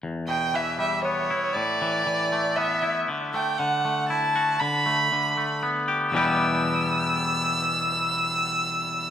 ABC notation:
X:1
M:3/4
L:1/16
Q:1/4=118
K:Em
V:1 name="Violin"
z2 g2 e2 e2 ^c4 | d8 e3 z | z2 g2 f4 a4 | b8 z4 |
e'12- | e'12 |]
V:2 name="Clean electric guitar" clef=bass
E,,2 B,,2 E,2 G,2 B,2 E2 | A,,2 E,2 E,2 A,2 B,2 E2 | D,2 A,2 D,2 A,2 E2 F2 | D,2 A,2 D,2 A,2 B,2 G2 |
[E,,B,,E,G,B,G]12- | [E,,B,,E,G,B,G]12 |]